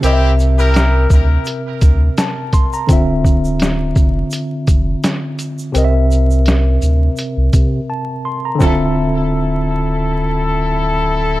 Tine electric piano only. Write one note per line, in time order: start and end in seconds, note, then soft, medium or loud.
0.01 2.84 C3 medium
0.01 2.85 C4 medium
0.01 2.86 A#4 medium
0.06 0.12 D#5 medium
0.13 2.90 E5 medium
2.18 2.52 A5 medium
2.54 2.72 C6 medium
2.74 3.07 A#5 medium
2.87 5.70 D3 medium
2.87 5.71 C4 medium
2.87 5.72 F4 medium
2.93 5.73 E5 medium
5.72 8.55 C3 medium
5.72 8.56 C4 medium
5.72 8.57 A#4 medium
5.78 5.83 D#5 medium
5.84 8.61 E5 loud
7.90 8.23 A5 medium
8.25 8.43 C6 medium
8.45 8.79 A#5 medium
8.55 11.40 D3 medium
8.55 11.40 C4 medium
8.62 11.40 F4 medium
8.62 11.40 E5 medium